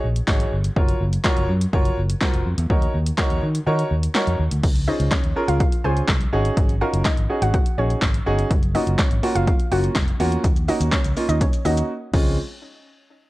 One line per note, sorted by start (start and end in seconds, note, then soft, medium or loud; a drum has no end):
0.04 0.20 A#1 medium
0.16 closed hi-hat medium
0.28 0.44 G#1 medium
0.28 0.53 D#4 medium
0.28 0.53 F#4 medium
0.28 0.53 G#4 medium
0.28 0.54 C#5 loud
0.28 kick loud
0.28 snare loud
0.28 clap loud
0.40 closed hi-hat medium
0.52 0.68 G1 medium
0.64 closed hi-hat medium
0.76 0.92 F#1 loud
0.76 1.02 F4 medium
0.76 1.02 F#4 medium
0.76 1.02 A#4 medium
0.76 1.02 C#5 medium
0.76 kick loud
0.88 closed hi-hat soft
1.01 1.16 F#1 loud
1.13 closed hi-hat medium
1.24 1.50 F4 loud
1.24 1.50 F#4 medium
1.24 1.50 A#4 loud
1.24 1.50 C#5 loud
1.24 kick loud
1.24 snare medium
1.24 clap loud
1.37 1.45 F#1 medium
1.37 closed hi-hat medium
1.49 1.65 F#2 loud
1.61 closed hi-hat medium
1.73 1.89 F#1 medium
1.73 1.99 F4 medium
1.73 1.99 F#4 medium
1.73 1.99 A#4 medium
1.73 1.99 C#5 loud
1.73 kick loud
1.85 closed hi-hat medium
1.97 2.13 F#1 medium
2.10 closed hi-hat medium
2.21 2.47 F4 medium
2.21 2.47 F#4 medium
2.21 2.47 A#4 medium
2.21 2.47 C5 loud
2.21 kick loud
2.21 snare medium
2.21 clap loud
2.34 2.42 F1 medium
2.34 closed hi-hat medium
2.46 2.54 F2 medium
2.58 2.66 E2 medium
2.58 closed hi-hat medium
2.70 2.86 D#2 loud
2.70 2.95 D#4 medium
2.70 2.95 F#4 medium
2.70 2.96 A#4 medium
2.70 2.96 C#5 medium
2.70 kick loud
2.82 closed hi-hat soft
2.94 3.10 D#2 loud
3.06 closed hi-hat medium
3.18 3.44 D#4 loud
3.18 3.44 F#4 loud
3.18 3.44 A#4 medium
3.18 3.44 C#5 loud
3.18 kick loud
3.18 snare medium
3.18 clap loud
3.30 3.38 D#2 medium
3.30 closed hi-hat medium
3.43 3.58 D#3 medium
3.55 closed hi-hat medium
3.66 3.83 D#3 loud
3.66 3.92 D#4 medium
3.66 3.92 F#4 medium
3.66 3.92 A#4 medium
3.66 3.92 C#5 loud
3.79 closed hi-hat medium
3.91 4.07 D#2 medium
4.03 closed hi-hat medium
4.15 4.40 D#4 medium
4.15 4.41 F#4 medium
4.15 4.41 A#4 medium
4.15 4.41 C#5 loud
4.15 snare medium
4.15 clap loud
4.27 4.35 F2 medium
4.27 closed hi-hat medium
4.39 4.47 D#2 medium
4.51 4.59 D2 medium
4.51 closed hi-hat medium
4.63 4.87 C#2 loud
4.63 kick loud
4.63 closed hi-hat medium
4.63 crash medium
4.76 closed hi-hat soft
4.88 5.13 C#4 medium
4.88 4.96 D#4 medium
4.88 5.13 F4 medium
4.88 5.13 G#4 medium
4.88 5.13 C5 medium
4.88 4.96 D#5 medium
5.00 5.08 C#2 medium
5.00 closed hi-hat medium
5.11 5.20 C#4 medium
5.11 5.20 C#5 medium
5.11 kick loud
5.11 snare medium
5.11 clap loud
5.11 closed hi-hat medium
5.24 5.32 D#2 medium
5.24 closed hi-hat medium
5.36 5.61 C#4 medium
5.36 5.62 F4 medium
5.36 5.62 G#4 medium
5.36 5.62 A#4 medium
5.48 5.64 C#2 medium
5.48 5.57 F4 medium
5.48 5.56 F5 medium
5.48 closed hi-hat medium
5.60 5.77 F4 medium
5.60 5.76 F5 medium
5.60 kick loud
5.60 closed hi-hat medium
5.72 closed hi-hat medium
5.84 6.00 C#2 medium
5.84 6.10 C#4 medium
5.84 6.10 F4 medium
5.84 6.10 G#4 medium
5.84 5.93 G#4 medium
5.84 6.10 C5 medium
5.84 5.92 G#5 medium
5.97 closed hi-hat medium
6.08 6.24 C2 medium
6.08 kick loud
6.08 snare loud
6.08 clap loud
6.08 closed hi-hat medium
6.21 closed hi-hat medium
6.33 6.49 G#1 medium
6.33 6.71 C#4 medium
6.33 6.72 D#4 medium
6.33 6.72 F#4 medium
6.33 6.72 G#4 loud
6.45 closed hi-hat medium
6.57 6.81 G#1 loud
6.57 kick loud
6.57 closed hi-hat medium
6.69 closed hi-hat soft
6.81 7.07 C#4 medium
6.81 7.07 D#4 medium
6.81 6.90 F4 medium
6.81 7.07 F#4 medium
6.81 7.07 A#4 medium
6.81 6.89 F5 medium
6.93 7.01 F#1 medium
6.93 closed hi-hat medium
7.05 7.14 D#4 medium
7.05 7.14 D#5 medium
7.05 kick loud
7.05 snare medium
7.05 clap loud
7.05 closed hi-hat medium
7.17 7.25 G#1 medium
7.17 closed hi-hat medium
7.29 7.55 C#4 medium
7.29 7.55 D#4 medium
7.29 7.55 F#4 medium
7.29 7.55 G#4 medium
7.42 7.58 G#1 loud
7.42 7.50 F#4 medium
7.42 7.50 F#5 medium
7.42 closed hi-hat medium
7.54 7.71 F#4 medium
7.54 7.70 F#5 medium
7.54 kick loud
7.54 closed hi-hat medium
7.66 closed hi-hat medium
7.78 7.94 A#1 medium
7.78 8.03 C#4 medium
7.78 7.87 C#4 medium
7.78 8.03 D#4 medium
7.78 8.04 F#4 medium
7.78 8.04 G#4 medium
7.78 7.86 C#5 medium
7.90 closed hi-hat soft
8.02 8.18 G#1 medium
8.02 kick loud
8.02 snare loud
8.02 clap loud
8.02 closed hi-hat medium
8.14 closed hi-hat medium
8.26 8.42 G1 loud
8.26 8.51 C#4 medium
8.26 8.51 D#4 medium
8.26 8.51 F#4 medium
8.26 8.51 G#4 loud
8.39 closed hi-hat medium
8.51 8.74 F#1 loud
8.51 kick loud
8.51 closed hi-hat medium
8.63 closed hi-hat soft
8.75 9.00 A#3 medium
8.75 9.00 C#4 medium
8.75 8.83 D#4 medium
8.75 9.00 F4 medium
8.75 9.00 F#4 medium
8.75 8.83 D#5 medium
8.75 open hi-hat medium
8.87 8.95 F#1 loud
8.87 closed hi-hat medium
8.98 9.08 C#4 medium
8.98 9.07 C#5 medium
8.98 kick loud
8.98 snare medium
8.98 clap loud
8.98 closed hi-hat medium
9.11 9.19 G#1 medium
9.11 closed hi-hat medium
9.23 9.49 A#3 medium
9.23 9.49 C#4 medium
9.23 9.49 F4 medium
9.23 9.49 F#4 loud
9.23 open hi-hat medium
9.35 9.51 F#1 medium
9.35 9.44 F4 medium
9.35 9.43 F5 medium
9.35 closed hi-hat medium
9.47 9.64 F4 medium
9.47 9.64 F5 medium
9.47 kick loud
9.47 closed hi-hat medium
9.60 closed hi-hat medium
9.71 9.87 F#1 medium
9.71 9.97 A#3 medium
9.71 9.97 C#4 medium
9.71 9.97 F4 medium
9.71 9.97 F#4 medium
9.71 9.80 F#4 medium
9.71 9.80 F#5 medium
9.71 open hi-hat medium
9.84 closed hi-hat medium
9.95 10.11 F1 medium
9.95 kick loud
9.95 snare medium
9.95 clap loud
9.95 closed hi-hat medium
10.08 closed hi-hat medium
10.20 10.36 E2 medium
10.20 10.44 A#3 medium
10.20 10.44 C#4 medium
10.20 10.44 F4 medium
10.20 10.44 F#4 loud
10.20 open hi-hat medium
10.32 closed hi-hat medium
10.44 10.68 D#2 loud
10.44 kick loud
10.44 closed hi-hat medium
10.44 shaker medium
10.56 closed hi-hat soft
10.56 shaker soft
10.68 10.94 A#3 medium
10.68 10.94 C#4 medium
10.68 10.94 D#4 medium
10.68 10.77 D#4 medium
10.68 10.94 F#4 medium
10.68 10.77 D#5 medium
10.68 open hi-hat medium
10.68 shaker medium
10.80 10.88 D#2 loud
10.80 closed hi-hat medium
10.80 shaker medium
10.92 11.01 C#4 medium
10.92 11.01 C#5 medium
10.92 kick loud
10.92 snare medium
10.92 clap loud
10.92 closed hi-hat medium
10.92 shaker medium
11.04 11.13 C#2 medium
11.04 closed hi-hat medium
11.04 shaker medium
11.17 11.42 A#3 medium
11.17 11.42 C#4 medium
11.17 11.42 D#4 medium
11.17 11.42 F4 medium
11.17 open hi-hat medium
11.17 shaker medium
11.29 11.45 D#2 medium
11.29 11.37 D#4 medium
11.29 11.37 D#5 medium
11.29 closed hi-hat medium
11.29 shaker loud
11.41 11.58 C#4 medium
11.41 11.57 C#5 medium
11.41 kick loud
11.41 closed hi-hat medium
11.41 shaker medium
11.53 closed hi-hat medium
11.53 shaker medium
11.65 11.81 D#2 medium
11.65 11.90 A#3 medium
11.65 11.91 C#4 medium
11.65 11.91 D#4 medium
11.65 11.74 D#4 medium
11.65 11.91 F#4 medium
11.65 11.73 D#5 medium
11.65 open hi-hat medium
11.65 shaker medium
11.77 closed hi-hat medium
11.77 shaker medium
12.13 12.36 C#2 loud
12.13 12.36 G#3 medium
12.13 12.36 C4 medium
12.13 12.36 C#4 medium
12.13 12.36 F4 medium
12.13 kick loud
12.13 crash medium